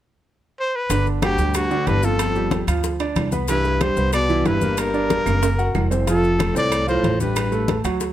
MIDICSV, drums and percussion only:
0, 0, Header, 1, 2, 480
1, 0, Start_track
1, 0, Key_signature, 1, "major"
1, 0, Tempo, 322928
1, 1345, Time_signature, 4, 2, 24, 8
1, 12080, End_track
2, 0, Start_track
2, 0, Title_t, "Drums"
2, 1338, Note_on_c, 9, 65, 69
2, 1338, Note_on_c, 9, 70, 83
2, 1343, Note_on_c, 9, 60, 62
2, 1343, Note_on_c, 9, 63, 31
2, 1487, Note_off_c, 9, 65, 0
2, 1487, Note_off_c, 9, 70, 0
2, 1491, Note_off_c, 9, 63, 0
2, 1492, Note_off_c, 9, 60, 0
2, 1579, Note_on_c, 9, 63, 35
2, 1582, Note_on_c, 9, 70, 29
2, 1585, Note_on_c, 9, 60, 35
2, 1727, Note_off_c, 9, 63, 0
2, 1731, Note_off_c, 9, 70, 0
2, 1734, Note_off_c, 9, 60, 0
2, 1818, Note_on_c, 9, 63, 94
2, 1818, Note_on_c, 9, 70, 29
2, 1822, Note_on_c, 9, 65, 91
2, 1825, Note_on_c, 9, 60, 57
2, 1825, Note_on_c, 9, 75, 62
2, 1966, Note_off_c, 9, 63, 0
2, 1966, Note_off_c, 9, 70, 0
2, 1971, Note_off_c, 9, 65, 0
2, 1973, Note_off_c, 9, 75, 0
2, 1974, Note_off_c, 9, 60, 0
2, 2055, Note_on_c, 9, 70, 62
2, 2062, Note_on_c, 9, 63, 35
2, 2204, Note_off_c, 9, 70, 0
2, 2210, Note_off_c, 9, 63, 0
2, 2291, Note_on_c, 9, 70, 90
2, 2299, Note_on_c, 9, 65, 83
2, 2301, Note_on_c, 9, 63, 29
2, 2303, Note_on_c, 9, 75, 62
2, 2306, Note_on_c, 9, 60, 61
2, 2440, Note_off_c, 9, 70, 0
2, 2447, Note_off_c, 9, 65, 0
2, 2449, Note_off_c, 9, 63, 0
2, 2452, Note_off_c, 9, 75, 0
2, 2455, Note_off_c, 9, 60, 0
2, 2538, Note_on_c, 9, 63, 34
2, 2540, Note_on_c, 9, 70, 28
2, 2548, Note_on_c, 9, 60, 33
2, 2687, Note_off_c, 9, 63, 0
2, 2688, Note_off_c, 9, 70, 0
2, 2696, Note_off_c, 9, 60, 0
2, 2777, Note_on_c, 9, 70, 29
2, 2779, Note_on_c, 9, 63, 82
2, 2784, Note_on_c, 9, 65, 60
2, 2784, Note_on_c, 9, 66, 62
2, 2785, Note_on_c, 9, 60, 35
2, 2785, Note_on_c, 9, 61, 80
2, 2926, Note_off_c, 9, 70, 0
2, 2927, Note_off_c, 9, 63, 0
2, 2933, Note_off_c, 9, 60, 0
2, 2933, Note_off_c, 9, 61, 0
2, 2933, Note_off_c, 9, 65, 0
2, 2933, Note_off_c, 9, 66, 0
2, 3015, Note_on_c, 9, 70, 67
2, 3022, Note_on_c, 9, 60, 32
2, 3163, Note_off_c, 9, 70, 0
2, 3171, Note_off_c, 9, 60, 0
2, 3257, Note_on_c, 9, 63, 33
2, 3259, Note_on_c, 9, 65, 97
2, 3260, Note_on_c, 9, 60, 65
2, 3261, Note_on_c, 9, 70, 90
2, 3261, Note_on_c, 9, 75, 63
2, 3406, Note_off_c, 9, 63, 0
2, 3408, Note_off_c, 9, 60, 0
2, 3408, Note_off_c, 9, 65, 0
2, 3410, Note_off_c, 9, 70, 0
2, 3410, Note_off_c, 9, 75, 0
2, 3498, Note_on_c, 9, 70, 27
2, 3501, Note_on_c, 9, 60, 35
2, 3504, Note_on_c, 9, 63, 33
2, 3647, Note_off_c, 9, 70, 0
2, 3650, Note_off_c, 9, 60, 0
2, 3652, Note_off_c, 9, 63, 0
2, 3734, Note_on_c, 9, 63, 99
2, 3743, Note_on_c, 9, 60, 53
2, 3743, Note_on_c, 9, 70, 29
2, 3745, Note_on_c, 9, 65, 64
2, 3883, Note_off_c, 9, 63, 0
2, 3892, Note_off_c, 9, 60, 0
2, 3892, Note_off_c, 9, 70, 0
2, 3893, Note_off_c, 9, 65, 0
2, 3977, Note_on_c, 9, 63, 34
2, 3981, Note_on_c, 9, 75, 65
2, 3984, Note_on_c, 9, 65, 90
2, 3984, Note_on_c, 9, 70, 64
2, 4126, Note_off_c, 9, 63, 0
2, 4130, Note_off_c, 9, 75, 0
2, 4132, Note_off_c, 9, 70, 0
2, 4133, Note_off_c, 9, 65, 0
2, 4215, Note_on_c, 9, 70, 83
2, 4218, Note_on_c, 9, 63, 32
2, 4219, Note_on_c, 9, 60, 63
2, 4364, Note_off_c, 9, 70, 0
2, 4366, Note_off_c, 9, 63, 0
2, 4367, Note_off_c, 9, 60, 0
2, 4452, Note_on_c, 9, 70, 28
2, 4456, Note_on_c, 9, 60, 30
2, 4460, Note_on_c, 9, 63, 30
2, 4460, Note_on_c, 9, 65, 71
2, 4600, Note_off_c, 9, 70, 0
2, 4605, Note_off_c, 9, 60, 0
2, 4609, Note_off_c, 9, 63, 0
2, 4609, Note_off_c, 9, 65, 0
2, 4693, Note_on_c, 9, 70, 31
2, 4699, Note_on_c, 9, 60, 31
2, 4699, Note_on_c, 9, 61, 77
2, 4699, Note_on_c, 9, 63, 73
2, 4703, Note_on_c, 9, 65, 81
2, 4703, Note_on_c, 9, 66, 60
2, 4704, Note_on_c, 9, 75, 68
2, 4842, Note_off_c, 9, 70, 0
2, 4848, Note_off_c, 9, 60, 0
2, 4848, Note_off_c, 9, 61, 0
2, 4848, Note_off_c, 9, 63, 0
2, 4852, Note_off_c, 9, 65, 0
2, 4852, Note_off_c, 9, 66, 0
2, 4852, Note_off_c, 9, 75, 0
2, 4932, Note_on_c, 9, 70, 63
2, 4937, Note_on_c, 9, 60, 31
2, 4938, Note_on_c, 9, 63, 68
2, 5081, Note_off_c, 9, 70, 0
2, 5086, Note_off_c, 9, 60, 0
2, 5086, Note_off_c, 9, 63, 0
2, 5171, Note_on_c, 9, 70, 80
2, 5179, Note_on_c, 9, 60, 61
2, 5184, Note_on_c, 9, 65, 65
2, 5187, Note_on_c, 9, 63, 35
2, 5320, Note_off_c, 9, 70, 0
2, 5328, Note_off_c, 9, 60, 0
2, 5333, Note_off_c, 9, 65, 0
2, 5335, Note_off_c, 9, 63, 0
2, 5417, Note_on_c, 9, 60, 33
2, 5419, Note_on_c, 9, 70, 26
2, 5426, Note_on_c, 9, 63, 36
2, 5565, Note_off_c, 9, 60, 0
2, 5568, Note_off_c, 9, 70, 0
2, 5574, Note_off_c, 9, 63, 0
2, 5657, Note_on_c, 9, 60, 59
2, 5660, Note_on_c, 9, 65, 87
2, 5660, Note_on_c, 9, 70, 32
2, 5662, Note_on_c, 9, 75, 64
2, 5667, Note_on_c, 9, 63, 94
2, 5806, Note_off_c, 9, 60, 0
2, 5808, Note_off_c, 9, 70, 0
2, 5809, Note_off_c, 9, 65, 0
2, 5811, Note_off_c, 9, 75, 0
2, 5816, Note_off_c, 9, 63, 0
2, 5897, Note_on_c, 9, 70, 62
2, 5903, Note_on_c, 9, 63, 34
2, 6046, Note_off_c, 9, 70, 0
2, 6052, Note_off_c, 9, 63, 0
2, 6135, Note_on_c, 9, 70, 86
2, 6136, Note_on_c, 9, 60, 64
2, 6144, Note_on_c, 9, 75, 60
2, 6145, Note_on_c, 9, 63, 29
2, 6145, Note_on_c, 9, 65, 81
2, 6283, Note_off_c, 9, 70, 0
2, 6285, Note_off_c, 9, 60, 0
2, 6293, Note_off_c, 9, 75, 0
2, 6294, Note_off_c, 9, 63, 0
2, 6294, Note_off_c, 9, 65, 0
2, 6380, Note_on_c, 9, 60, 33
2, 6380, Note_on_c, 9, 63, 35
2, 6380, Note_on_c, 9, 70, 27
2, 6528, Note_off_c, 9, 60, 0
2, 6529, Note_off_c, 9, 63, 0
2, 6529, Note_off_c, 9, 70, 0
2, 6619, Note_on_c, 9, 63, 74
2, 6621, Note_on_c, 9, 70, 29
2, 6623, Note_on_c, 9, 65, 61
2, 6623, Note_on_c, 9, 66, 58
2, 6625, Note_on_c, 9, 60, 32
2, 6625, Note_on_c, 9, 61, 83
2, 6768, Note_off_c, 9, 63, 0
2, 6770, Note_off_c, 9, 70, 0
2, 6772, Note_off_c, 9, 65, 0
2, 6772, Note_off_c, 9, 66, 0
2, 6774, Note_off_c, 9, 60, 0
2, 6774, Note_off_c, 9, 61, 0
2, 6858, Note_on_c, 9, 63, 66
2, 6858, Note_on_c, 9, 70, 67
2, 6861, Note_on_c, 9, 60, 30
2, 7006, Note_off_c, 9, 70, 0
2, 7007, Note_off_c, 9, 63, 0
2, 7009, Note_off_c, 9, 60, 0
2, 7095, Note_on_c, 9, 70, 88
2, 7103, Note_on_c, 9, 60, 58
2, 7103, Note_on_c, 9, 75, 61
2, 7106, Note_on_c, 9, 63, 32
2, 7106, Note_on_c, 9, 65, 94
2, 7244, Note_off_c, 9, 70, 0
2, 7252, Note_off_c, 9, 60, 0
2, 7252, Note_off_c, 9, 75, 0
2, 7254, Note_off_c, 9, 63, 0
2, 7255, Note_off_c, 9, 65, 0
2, 7340, Note_on_c, 9, 70, 28
2, 7345, Note_on_c, 9, 60, 33
2, 7347, Note_on_c, 9, 63, 33
2, 7488, Note_off_c, 9, 70, 0
2, 7494, Note_off_c, 9, 60, 0
2, 7495, Note_off_c, 9, 63, 0
2, 7582, Note_on_c, 9, 60, 59
2, 7584, Note_on_c, 9, 63, 95
2, 7584, Note_on_c, 9, 65, 65
2, 7585, Note_on_c, 9, 70, 29
2, 7731, Note_off_c, 9, 60, 0
2, 7732, Note_off_c, 9, 65, 0
2, 7733, Note_off_c, 9, 63, 0
2, 7734, Note_off_c, 9, 70, 0
2, 7824, Note_on_c, 9, 70, 62
2, 7824, Note_on_c, 9, 75, 68
2, 7827, Note_on_c, 9, 65, 67
2, 7828, Note_on_c, 9, 63, 33
2, 7973, Note_off_c, 9, 70, 0
2, 7973, Note_off_c, 9, 75, 0
2, 7976, Note_off_c, 9, 63, 0
2, 7976, Note_off_c, 9, 65, 0
2, 8065, Note_on_c, 9, 63, 31
2, 8066, Note_on_c, 9, 60, 64
2, 8067, Note_on_c, 9, 65, 72
2, 8068, Note_on_c, 9, 70, 87
2, 8214, Note_off_c, 9, 63, 0
2, 8215, Note_off_c, 9, 60, 0
2, 8216, Note_off_c, 9, 65, 0
2, 8217, Note_off_c, 9, 70, 0
2, 8306, Note_on_c, 9, 60, 35
2, 8307, Note_on_c, 9, 70, 27
2, 8308, Note_on_c, 9, 63, 31
2, 8454, Note_off_c, 9, 60, 0
2, 8456, Note_off_c, 9, 70, 0
2, 8457, Note_off_c, 9, 63, 0
2, 8543, Note_on_c, 9, 63, 79
2, 8546, Note_on_c, 9, 66, 71
2, 8547, Note_on_c, 9, 60, 33
2, 8547, Note_on_c, 9, 61, 76
2, 8549, Note_on_c, 9, 70, 29
2, 8549, Note_on_c, 9, 75, 67
2, 8691, Note_off_c, 9, 63, 0
2, 8695, Note_off_c, 9, 66, 0
2, 8696, Note_off_c, 9, 60, 0
2, 8696, Note_off_c, 9, 61, 0
2, 8697, Note_off_c, 9, 75, 0
2, 8698, Note_off_c, 9, 70, 0
2, 8786, Note_on_c, 9, 60, 31
2, 8791, Note_on_c, 9, 66, 71
2, 8793, Note_on_c, 9, 70, 67
2, 8935, Note_off_c, 9, 60, 0
2, 8940, Note_off_c, 9, 66, 0
2, 8942, Note_off_c, 9, 70, 0
2, 9028, Note_on_c, 9, 60, 59
2, 9028, Note_on_c, 9, 63, 34
2, 9030, Note_on_c, 9, 65, 71
2, 9032, Note_on_c, 9, 70, 88
2, 9176, Note_off_c, 9, 63, 0
2, 9177, Note_off_c, 9, 60, 0
2, 9178, Note_off_c, 9, 65, 0
2, 9181, Note_off_c, 9, 70, 0
2, 9265, Note_on_c, 9, 60, 36
2, 9269, Note_on_c, 9, 63, 31
2, 9275, Note_on_c, 9, 70, 28
2, 9414, Note_off_c, 9, 60, 0
2, 9418, Note_off_c, 9, 63, 0
2, 9424, Note_off_c, 9, 70, 0
2, 9503, Note_on_c, 9, 60, 63
2, 9503, Note_on_c, 9, 75, 68
2, 9512, Note_on_c, 9, 65, 86
2, 9514, Note_on_c, 9, 63, 98
2, 9514, Note_on_c, 9, 70, 30
2, 9651, Note_off_c, 9, 75, 0
2, 9652, Note_off_c, 9, 60, 0
2, 9661, Note_off_c, 9, 65, 0
2, 9662, Note_off_c, 9, 70, 0
2, 9663, Note_off_c, 9, 63, 0
2, 9751, Note_on_c, 9, 63, 34
2, 9753, Note_on_c, 9, 70, 67
2, 9900, Note_off_c, 9, 63, 0
2, 9901, Note_off_c, 9, 70, 0
2, 9984, Note_on_c, 9, 60, 59
2, 9986, Note_on_c, 9, 75, 54
2, 9988, Note_on_c, 9, 65, 85
2, 9988, Note_on_c, 9, 70, 84
2, 9989, Note_on_c, 9, 63, 31
2, 10132, Note_off_c, 9, 60, 0
2, 10134, Note_off_c, 9, 75, 0
2, 10136, Note_off_c, 9, 65, 0
2, 10137, Note_off_c, 9, 70, 0
2, 10138, Note_off_c, 9, 63, 0
2, 10224, Note_on_c, 9, 63, 33
2, 10227, Note_on_c, 9, 60, 32
2, 10230, Note_on_c, 9, 70, 27
2, 10373, Note_off_c, 9, 63, 0
2, 10375, Note_off_c, 9, 60, 0
2, 10378, Note_off_c, 9, 70, 0
2, 10465, Note_on_c, 9, 70, 31
2, 10466, Note_on_c, 9, 63, 76
2, 10468, Note_on_c, 9, 60, 33
2, 10468, Note_on_c, 9, 61, 76
2, 10469, Note_on_c, 9, 65, 64
2, 10469, Note_on_c, 9, 66, 64
2, 10614, Note_off_c, 9, 70, 0
2, 10615, Note_off_c, 9, 63, 0
2, 10617, Note_off_c, 9, 60, 0
2, 10617, Note_off_c, 9, 61, 0
2, 10617, Note_off_c, 9, 65, 0
2, 10617, Note_off_c, 9, 66, 0
2, 10705, Note_on_c, 9, 70, 65
2, 10708, Note_on_c, 9, 60, 30
2, 10708, Note_on_c, 9, 63, 70
2, 10854, Note_off_c, 9, 70, 0
2, 10856, Note_off_c, 9, 63, 0
2, 10857, Note_off_c, 9, 60, 0
2, 10939, Note_on_c, 9, 70, 82
2, 10942, Note_on_c, 9, 75, 60
2, 10948, Note_on_c, 9, 60, 63
2, 10948, Note_on_c, 9, 63, 32
2, 10949, Note_on_c, 9, 65, 96
2, 11087, Note_off_c, 9, 70, 0
2, 11091, Note_off_c, 9, 75, 0
2, 11096, Note_off_c, 9, 60, 0
2, 11097, Note_off_c, 9, 63, 0
2, 11097, Note_off_c, 9, 65, 0
2, 11180, Note_on_c, 9, 70, 26
2, 11187, Note_on_c, 9, 60, 33
2, 11187, Note_on_c, 9, 63, 35
2, 11329, Note_off_c, 9, 70, 0
2, 11335, Note_off_c, 9, 63, 0
2, 11336, Note_off_c, 9, 60, 0
2, 11417, Note_on_c, 9, 70, 30
2, 11419, Note_on_c, 9, 63, 96
2, 11426, Note_on_c, 9, 60, 58
2, 11433, Note_on_c, 9, 65, 67
2, 11566, Note_off_c, 9, 70, 0
2, 11568, Note_off_c, 9, 63, 0
2, 11575, Note_off_c, 9, 60, 0
2, 11582, Note_off_c, 9, 65, 0
2, 11658, Note_on_c, 9, 70, 64
2, 11663, Note_on_c, 9, 63, 33
2, 11669, Note_on_c, 9, 75, 64
2, 11671, Note_on_c, 9, 65, 89
2, 11806, Note_off_c, 9, 70, 0
2, 11811, Note_off_c, 9, 63, 0
2, 11817, Note_off_c, 9, 75, 0
2, 11820, Note_off_c, 9, 65, 0
2, 11897, Note_on_c, 9, 70, 88
2, 11905, Note_on_c, 9, 60, 65
2, 11905, Note_on_c, 9, 63, 32
2, 12046, Note_off_c, 9, 70, 0
2, 12053, Note_off_c, 9, 60, 0
2, 12054, Note_off_c, 9, 63, 0
2, 12080, End_track
0, 0, End_of_file